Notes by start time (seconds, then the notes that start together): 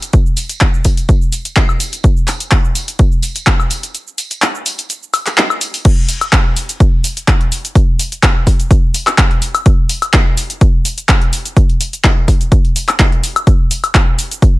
0.01 closed hi-hat, tambourine, cabasa
0.13 kick, closed hi-hat, cabasa
0.26 cabasa
0.37 open hi-hat, tambourine, cabasa
0.49 closed hi-hat, tambourine, cabasa
0.61 kick, clap, closed hi-hat, cabasa
0.74 cabasa
0.85 kick, open hi-hat, tambourine, cabasa
0.97 closed hi-hat, tambourine, cabasa
1.09 kick, closed hi-hat, tambourine, cabasa
1.22 cabasa
1.32 open hi-hat, tambourine, cabasa
1.45 closed hi-hat, tambourine, cabasa
1.56 kick, clap, closed hi-hat, tambourine, cabasa
1.69 cabasa, high woodblock
1.80 open hi-hat, tambourine, cabasa
1.92 closed hi-hat, tambourine, cabasa
2.03 kick, closed hi-hat, tambourine, cabasa
2.17 cabasa
2.27 clap, open hi-hat, tambourine, cabasa
2.40 closed hi-hat, tambourine, cabasa
2.51 kick, clap, closed hi-hat, cabasa
2.65 cabasa
2.75 open hi-hat, tambourine, cabasa
2.88 closed hi-hat, tambourine, cabasa
2.99 kick, closed hi-hat, cabasa
3.12 cabasa
3.22 open hi-hat, tambourine, cabasa
3.35 closed hi-hat, tambourine, cabasa
3.47 kick, clap, closed hi-hat, cabasa
3.60 cabasa, high woodblock
3.70 open hi-hat, tambourine, cabasa
3.83 closed hi-hat, tambourine, cabasa
3.95 closed hi-hat, tambourine, cabasa
4.07 cabasa
4.18 open hi-hat, tambourine, cabasa
4.30 closed hi-hat, tambourine, cabasa
4.42 clap, closed hi-hat, tambourine, cabasa
4.55 cabasa
4.66 open hi-hat, tambourine, cabasa
4.78 closed hi-hat, tambourine, cabasa
4.89 closed hi-hat, tambourine, cabasa
5.03 cabasa
5.14 open hi-hat, tambourine, cabasa, high woodblock
5.26 clap, closed hi-hat, tambourine, cabasa
5.38 clap, closed hi-hat, tambourine, cabasa
5.50 cabasa, high woodblock
5.61 open hi-hat, tambourine, cabasa
5.74 open hi-hat, tambourine, cabasa
5.85 kick, closed hi-hat, crash, cabasa
6.09 open hi-hat, cabasa
6.21 closed hi-hat, cabasa, high woodblock
6.33 kick, clap, closed hi-hat, cabasa
6.56 open hi-hat, cabasa
6.69 closed hi-hat, cabasa
6.80 kick, closed hi-hat, cabasa
7.04 open hi-hat, cabasa
7.17 closed hi-hat, cabasa
7.28 kick, clap, closed hi-hat, cabasa
7.41 closed hi-hat
7.52 open hi-hat, cabasa
7.65 closed hi-hat, cabasa
7.75 kick, closed hi-hat, cabasa
7.99 open hi-hat, cabasa
8.12 closed hi-hat, cabasa
8.23 kick, clap, closed hi-hat, cabasa
8.47 kick, open hi-hat, cabasa
8.60 closed hi-hat, cabasa
8.71 kick, closed hi-hat, cabasa
8.94 open hi-hat, cabasa
9.07 clap, closed hi-hat, cabasa, high woodblock
9.18 kick, clap, closed hi-hat, cabasa
9.31 closed hi-hat
9.42 open hi-hat, cabasa
9.55 closed hi-hat, cabasa, high woodblock
9.66 kick, closed hi-hat, cabasa
9.89 open hi-hat, cabasa
10.02 closed hi-hat, cabasa, high woodblock
10.14 kick, clap, closed hi-hat, cabasa
10.37 open hi-hat, cabasa
10.50 closed hi-hat, cabasa
10.61 kick, closed hi-hat, cabasa
10.85 open hi-hat, cabasa
10.98 closed hi-hat, cabasa
11.09 kick, clap, closed hi-hat, cabasa
11.22 closed hi-hat
11.33 open hi-hat, cabasa
11.45 closed hi-hat, cabasa
11.57 kick, closed hi-hat, cabasa
11.70 closed hi-hat
11.81 open hi-hat, cabasa
11.93 closed hi-hat, cabasa
12.04 kick, clap, closed hi-hat, cabasa
12.28 kick, open hi-hat, cabasa
12.41 closed hi-hat, cabasa
12.52 kick, closed hi-hat, cabasa
12.65 closed hi-hat
12.76 open hi-hat, cabasa
12.88 clap, closed hi-hat, cabasa, high woodblock
12.99 kick, clap, closed hi-hat, cabasa
13.12 closed hi-hat
13.24 open hi-hat, cabasa
13.36 closed hi-hat, cabasa, high woodblock
13.47 kick, closed hi-hat, cabasa
13.71 open hi-hat, cabasa
13.84 closed hi-hat, cabasa, high woodblock
13.95 kick, clap, closed hi-hat, cabasa
14.19 open hi-hat, cabasa
14.31 closed hi-hat, cabasa
14.42 kick, closed hi-hat, cabasa